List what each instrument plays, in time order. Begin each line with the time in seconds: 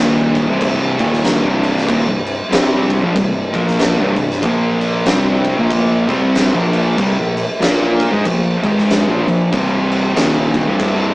Already playing: fingered electric bass D#1, distorted electric guitar D#2
0.00 distorted electric guitar A#2 D#3
0.35 kick, crash
0.47 fingered electric bass C1, distorted electric guitar C2 G2 C3
0.61 kick, crash
0.97 fingered electric bass D#1, distorted electric guitar D#2 A#2 D#3, kick, crash
1.13 snare
1.24 snare, crash
1.42 fingered electric bass C1, distorted electric guitar C2 G2 C3
1.63 crash
1.77 snare
1.87 fingered electric bass D#1, distorted electric guitar D#2 A#2, kick, crash
2.06 fingered electric bass C1, distorted electric guitar C2 G2
2.27 crash
2.49 fingered electric bass C2, distorted electric guitar C3 G3 C4, crash
2.53 snare
2.90 kick, crash
2.99 fingered electric bass A#1, distorted electric guitar A#2 F3
3.13 fingered electric bass C1, distorted electric guitar C2 G2, kick, crash
3.50 fingered electric bass A#1, distorted electric guitar A#2 F3 A#3, kick
3.54 crash
3.68 snare
3.79 snare, crash
3.95 distorted electric guitar C2 G2
4.00 fingered electric bass C1
4.15 distorted electric guitar C2 G2, crash
4.20 fingered electric bass C1
4.31 snare
4.41 fingered electric bass A#1, distorted electric guitar A#2 F3 A#3, kick, crash
4.81 crash
5.05 fingered electric bass C2, distorted electric guitar C3 G3 C4, snare, crash
5.45 kick, crash
5.56 fingered electric bass A#1, distorted electric guitar A#2 F3 A#3
5.70 kick, crash
6.07 fingered electric bass C2, distorted electric guitar C3 G3 C4, kick, crash
6.35 snare, crash
6.52 fingered electric bass A#1, distorted electric guitar A#2 F3 A#3
6.73 crash
6.96 fingered electric bass C2, distorted electric guitar C3 G3, kick, crash
7.15 fingered electric bass A#1, distorted electric guitar A#2 F3
7.37 crash
7.61 fingered electric bass A#2, distorted electric guitar A#3 F4 A#4, snare, crash
8.00 kick, crash
8.13 fingered electric bass G#2, distorted electric guitar G#3 D#4
8.25 fingered electric bass A#1, distorted electric guitar A#2 F3, kick, crash
8.63 fingered electric bass G#1, distorted electric guitar G#2 D#3 G#3, kick, crash
8.78 snare
8.90 snare, crash
9.07 fingered electric bass A#1, distorted electric guitar A#2 F3
9.27 fingered electric bass A#1, distorted electric guitar A#2 F3, crash
9.52 fingered electric bass C1, distorted electric guitar C2 G2 C3, kick, crash
9.92 crash
10.15 fingered electric bass D#1, distorted electric guitar D#2 A#2 D#3, snare, crash
10.54 kick, crash
10.66 fingered electric bass C1, distorted electric guitar C2 G2 C3
10.80 kick, crash